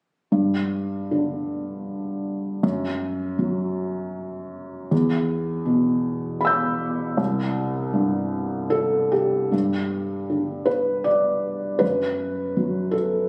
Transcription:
0.32 2.59 G2 soft
1.11 2.63 D3 soft
2.63 4.88 F#2 soft
3.39 4.91 F#3 soft
4.91 7.15 E2 medium
5.65 7.18 B2 soft
6.41 7.14 B5 soft
6.45 7.16 E6 soft
6.45 7.17 G6 soft
7.17 9.48 C2 medium
7.93 9.50 G2 soft
8.70 9.11 A4 medium
9.12 10.68 G4 soft
9.52 11.77 G2 soft
10.30 11.81 D3 soft
10.66 11.05 B4 medium
11.04 11.81 D5 medium
11.79 13.29 F#2 soft
11.79 12.93 B4 medium
12.57 13.29 F#3 soft
12.91 13.29 A4 medium

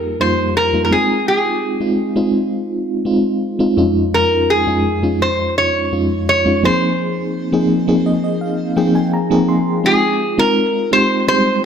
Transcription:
0.00 0.20 F2 medium
0.00 0.20 G3 medium
0.00 0.20 A#3 medium
0.00 0.21 D#4 medium
0.00 0.21 F4 medium
0.00 0.12 G4 medium
0.00 0.20 A#4 loud
0.20 0.68 F2 medium
0.20 0.68 G3 medium
0.20 0.68 A#3 medium
0.20 0.68 D#4 medium
0.20 0.69 F4 medium
0.20 0.56 C5 medium
0.57 0.83 A#4 medium
0.73 0.91 F2 medium
0.73 0.92 G3 medium
0.73 0.92 A#3 medium
0.73 0.90 D#4 medium
0.73 0.91 F4 medium
0.85 0.92 A#4 medium
0.91 1.71 G#3 medium
0.91 1.72 C4 medium
0.91 1.72 D#4 medium
0.91 1.72 F4 medium
0.91 1.27 G#4 medium
1.28 2.31 G#4 medium
1.80 2.13 G#3 medium
1.80 2.13 C4 medium
1.80 2.13 D#4 medium
1.80 2.13 F4 medium
2.16 2.96 G#3 medium
2.16 2.96 C4 medium
2.16 2.97 D#4 medium
2.16 2.97 F4 medium
3.05 3.54 G#3 medium
3.05 3.54 C4 medium
3.05 3.54 D#4 medium
3.05 3.54 F4 medium
3.59 3.76 G#3 medium
3.59 3.77 C4 medium
3.59 3.77 D#4 medium
3.59 3.77 F4 medium
3.77 4.57 F2 medium
3.77 4.57 G#3 medium
3.77 4.58 C#4 medium
3.77 4.58 D#4 medium
3.77 4.58 F4 medium
4.14 4.51 A#4 medium
4.50 5.23 G#4 medium
4.67 4.99 F2 medium
4.67 4.99 G#3 medium
4.67 4.99 C#4 medium
4.67 4.99 D#4 medium
4.67 4.99 F4 medium
5.02 5.82 F2 medium
5.02 5.83 G#3 medium
5.02 5.83 C#4 medium
5.02 5.83 D#4 medium
5.02 5.83 F4 medium
5.22 5.57 C5 medium
5.58 6.28 C#5 loud
5.92 6.40 F2 medium
5.92 6.40 G#3 medium
5.92 6.40 C#4 medium
5.92 6.40 D#4 medium
5.92 6.40 F4 medium
6.29 6.65 C#5 loud
6.45 6.63 F2 medium
6.45 6.63 G#3 medium
6.45 6.63 C#4 medium
6.45 6.63 D#4 medium
6.45 6.64 F4 medium
6.63 7.43 F3 medium
6.63 7.43 A#3 medium
6.63 7.43 C4 medium
6.63 7.44 D#4 medium
6.63 7.44 G#4 medium
6.63 9.10 C5 medium
7.52 7.84 F3 medium
7.52 7.85 A#3 medium
7.52 7.85 C4 medium
7.52 7.85 D#4 medium
7.52 7.85 G#4 medium
7.87 8.68 F3 medium
7.87 8.68 A#3 medium
7.87 8.68 C4 medium
7.87 8.68 D#4 medium
7.87 8.68 G#4 medium
8.06 8.23 D#5 medium
8.24 8.41 D#5 medium
8.41 8.75 F5 medium
8.76 9.25 F3 medium
8.76 9.25 A#3 medium
8.76 9.25 C4 medium
8.76 9.26 D#4 medium
8.76 9.26 G#4 medium
8.76 8.94 G5 medium
8.95 9.12 G#5 medium
9.13 9.47 A#5 medium
9.30 9.79 F3 medium
9.30 9.79 A#3 medium
9.30 9.79 C4 medium
9.30 9.79 D#4 medium
9.30 9.79 G#4 loud
9.49 9.82 C6 medium
9.83 10.32 G#3 medium
9.83 10.32 C4 medium
9.83 10.33 D#4 medium
9.83 10.33 F4 medium
9.83 10.40 G#4 loud
10.38 10.86 G#3 medium
10.38 10.86 C4 medium
10.38 10.86 D#4 medium
10.38 10.86 F4 medium
10.38 10.92 A#4 medium
10.91 11.24 G#3 medium
10.91 11.24 C4 medium
10.91 11.24 D#4 medium
10.91 11.24 G4 medium
10.91 11.27 C5 loud
11.27 11.34 G3 medium
11.27 11.65 C4 medium
11.27 11.65 D#4 medium
11.27 11.65 G4 medium
11.27 11.61 C5 loud
11.34 11.65 G#3 medium

